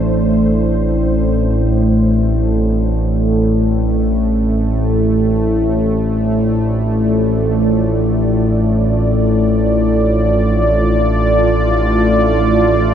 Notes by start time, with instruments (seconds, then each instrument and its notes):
Already playing: synth drone A1 A2, analog synth pad A3 E4 C5, singing bowl D4 D5
5.88 analog synth pad D5
6.21 analog synth pad F4